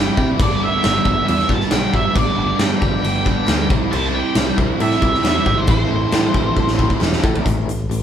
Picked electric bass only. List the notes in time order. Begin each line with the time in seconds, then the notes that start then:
0.17 C3
0.39 G1
0.85 G1
1.05 G1
1.29 E2
1.49 G1
1.72 B1
1.94 G1
2.16 G1
2.38 G1
2.59 G2
2.82 G1
3.03 G1
3.48 D2
3.70 C2
3.93 C2
4.36 C2
4.58 C2
4.80 A2
5.02 C2
5.24 E2
5.46 G#1
5.68 A1
5.91 A1
6.13 A2
6.35 A1
6.57 A1
7.01 E1
7.24 A2
7.45 A1
7.66 A1
7.90 A1